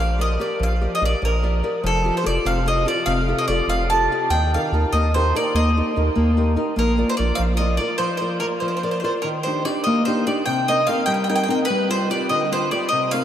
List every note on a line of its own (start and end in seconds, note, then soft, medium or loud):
0.00 0.38 A#1 medium
0.00 0.38 F3 medium
0.00 0.10 G4 soft
0.00 0.11 A#4 soft
0.00 0.11 D5 soft
0.00 0.19 F5 medium
0.18 0.38 G4 soft
0.18 0.39 A#4 soft
0.18 0.39 D5 soft
0.18 0.41 D#5 medium
0.40 0.73 G4 medium
0.40 0.74 A#4 soft
0.40 0.74 D5 medium
0.40 0.59 D5 medium
0.60 0.87 A#1 medium
0.60 1.00 F3 soft
0.60 0.91 F5 medium
0.81 1.00 G4 soft
0.81 1.01 A#4 soft
0.81 1.01 D5 soft
0.95 1.04 D#5 medium
1.01 1.15 A#1 medium
1.01 1.35 G4 soft
1.01 1.35 A#4 soft
1.01 1.36 D5 soft
1.05 1.22 D5 medium
1.22 1.62 A#1 medium
1.22 1.62 F3 soft
1.22 1.67 A#4 medium
1.43 1.62 G4 soft
1.43 1.62 A#4 soft
1.43 1.63 D5 medium
1.63 1.79 G4 soft
1.63 1.79 A#4 soft
1.63 1.80 D5 medium
1.83 2.11 F1 medium
1.83 2.24 F3 medium
1.83 2.15 A4 medium
2.05 2.22 F4 soft
2.05 2.23 G4 soft
2.05 2.23 A4 soft
2.17 2.25 C5 medium
2.24 2.39 F1 medium
2.24 2.57 F4 soft
2.24 2.58 G4 soft
2.24 2.58 A4 medium
2.24 2.44 D5 medium
2.45 2.85 F1 loud
2.45 2.85 C3 medium
2.45 2.66 F5 medium
2.66 2.84 F4 soft
2.66 2.85 G4 soft
2.66 2.85 A4 soft
2.66 2.88 D#5 medium
2.85 3.19 F4 medium
2.85 3.20 G4 soft
2.85 3.20 A4 medium
2.85 3.06 D5 medium
3.06 3.34 F1 medium
3.06 3.47 C3 medium
3.06 3.39 F5 medium
3.28 3.47 F4 soft
3.28 3.48 G4 soft
3.28 3.48 A4 soft
3.38 3.47 D#5 medium
3.48 3.61 F1 medium
3.48 3.82 F4 soft
3.48 3.82 G4 soft
3.48 3.82 A4 soft
3.48 3.66 D5 medium
3.68 4.08 F1 medium
3.68 4.10 C3 medium
3.68 3.89 F5 medium
3.90 4.11 F4 soft
3.90 4.11 G4 soft
3.90 4.11 A4 soft
3.90 4.27 A5 medium
4.12 4.27 F4 soft
4.12 4.27 G4 soft
4.12 4.28 A4 medium
4.30 4.58 D#2 medium
4.30 4.72 D#3 soft
4.30 4.51 G5 medium
4.54 4.72 D#4 soft
4.54 4.72 G4 soft
4.54 4.73 A#4 soft
4.54 4.91 F5 medium
4.72 4.85 D#2 medium
4.72 5.07 D#4 soft
4.72 5.07 G4 soft
4.72 5.07 A#4 soft
4.93 5.33 D#2 medium
4.93 5.34 A#3 medium
4.93 5.14 D#5 medium
5.14 5.34 D#4 soft
5.14 5.34 G4 soft
5.14 5.34 A#4 medium
5.14 5.33 C5 medium
5.35 5.68 D#4 soft
5.35 5.68 G4 soft
5.35 5.69 A#4 medium
5.35 5.54 D5 medium
5.55 5.82 D#2 medium
5.55 5.95 A#3 soft
5.55 5.99 D#5 medium
5.77 5.95 D#4 soft
5.77 5.96 G4 soft
5.77 5.96 A#4 soft
5.96 6.10 D#2 medium
5.96 6.30 D#4 soft
5.96 6.30 G4 soft
5.96 6.30 A#4 soft
6.16 6.57 D#2 medium
6.16 6.56 A#3 medium
6.37 6.55 D#4 soft
6.37 6.56 G4 soft
6.37 6.56 A#4 soft
6.56 6.73 D#4 medium
6.56 6.73 G4 soft
6.56 6.73 A#4 medium
6.76 7.05 A#1 medium
6.76 7.17 A#3 medium
6.76 7.08 A#4 medium
6.98 7.17 F4 soft
6.98 7.17 A#4 soft
6.98 7.18 D5 soft
7.09 7.17 C5 medium
7.17 7.32 A#1 medium
7.17 7.52 F4 soft
7.17 7.52 A#4 soft
7.17 7.38 D5 medium
7.17 7.52 D5 soft
7.35 7.79 A#1 medium
7.35 7.78 F3 medium
7.35 7.42 F5 medium
7.57 7.78 F4 soft
7.57 7.79 A#4 soft
7.57 7.79 D5 medium
7.57 7.77 D#5 medium
7.77 8.13 F4 soft
7.77 8.14 A#4 soft
7.77 7.97 D5 medium
7.77 8.14 D5 medium
7.98 8.40 F3 medium
7.98 8.16 C5 medium
8.17 8.40 F4 soft
8.17 8.38 C5 medium
8.17 8.42 D5 soft
8.21 8.41 A#4 soft
8.40 8.75 F4 soft
8.40 8.46 A#4 medium
8.40 8.76 A#4 soft
8.40 8.76 D5 soft
8.60 9.03 F3 medium
8.60 8.67 C5 soft
8.68 8.76 C5 soft
8.77 8.82 C5 soft
8.83 9.03 F4 soft
8.83 9.02 A#4 soft
8.83 8.90 C5 soft
8.83 9.03 D5 soft
8.91 8.99 C5 soft
9.00 9.20 F4 soft
9.00 9.20 A#4 soft
9.00 9.03 C5 soft
9.04 9.13 C5 soft
9.04 9.20 D5 soft
9.22 9.65 D#3 medium
9.22 9.28 A#4 medium
9.43 9.64 D4 soft
9.43 9.64 D#4 soft
9.43 9.65 G4 soft
9.43 9.63 C5 medium
9.65 9.99 D4 soft
9.65 9.99 D#4 soft
9.65 9.99 G4 soft
9.65 9.83 D5 medium
9.84 10.26 A#3 medium
9.84 10.05 D#5 medium
10.05 10.25 D4 medium
10.05 10.26 D#4 soft
10.05 10.26 G4 soft
10.05 10.25 C5 medium
10.26 10.43 D4 soft
10.26 10.43 D#4 soft
10.26 10.43 G4 medium
10.26 10.46 D5 medium
10.46 10.87 C3 medium
10.46 10.69 G5 medium
10.68 10.87 C4 soft
10.68 10.87 D#4 soft
10.68 10.88 A#4 soft
10.68 10.87 D#5 medium
10.87 11.21 C4 soft
10.87 11.21 D#4 soft
10.87 11.22 A#4 medium
10.87 11.05 F5 medium
11.06 11.48 G3 medium
11.06 11.13 G5 medium
11.14 11.22 G5 soft
11.24 11.28 G5 medium
11.29 11.47 C4 soft
11.29 11.47 D#4 soft
11.29 11.47 A#4 medium
11.29 11.34 G5 medium
11.36 11.42 G5 medium
11.44 11.49 G5 medium
11.48 11.64 C4 medium
11.48 11.65 D#4 soft
11.48 11.65 A#4 medium
11.48 11.59 G5 medium
11.65 11.87 B4 medium
11.70 12.10 G3 medium
11.89 12.09 F4 soft
11.89 12.09 G4 soft
11.89 12.09 B4 soft
11.89 12.09 C5 medium
12.10 12.43 F4 soft
12.10 12.43 G4 soft
12.10 12.44 B4 medium
12.10 12.29 D5 medium
12.29 12.70 D3 medium
12.29 12.50 D#5 medium
12.52 12.71 F4 medium
12.52 12.71 G4 soft
12.52 12.71 B4 medium
12.52 12.71 C5 medium
12.71 12.88 F4 medium
12.71 12.88 G4 soft
12.71 12.88 B4 medium
12.71 12.88 D5 medium
12.89 13.24 C3 medium
12.89 13.10 D#5 medium
13.11 13.24 C4 soft
13.11 13.24 D#4 soft
13.11 13.24 A#4 soft
13.11 13.24 F5 loud